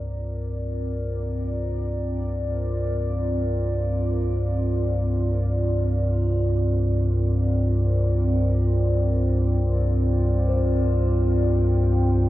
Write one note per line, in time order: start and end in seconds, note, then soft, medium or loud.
0.00 12.29 C2 medium
0.00 12.29 G2 medium
0.00 12.29 C4 medium
0.00 12.29 F4 medium
0.00 12.29 A#4 medium
0.00 11.48 D5 medium
10.49 12.29 C5 medium
11.42 12.29 G5 medium
12.06 12.29 C5 medium